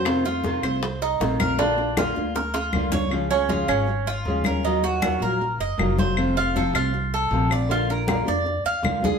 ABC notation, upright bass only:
X:1
M:4/4
L:1/8
Q:1/4=157
K:Dbmix
V:1 name="Upright bass" clef=bass
F,,3 =C,,3 B,,,2- | B,,,3 =D,,3 _D,,2- | D,,3 A,,,3 E,,2- | E,,3 B,,,2 G,,, F,,,2- |
F,,,3 =C,,3 B,,,2- | B,,,3 F,,2 E,, D,,2 |]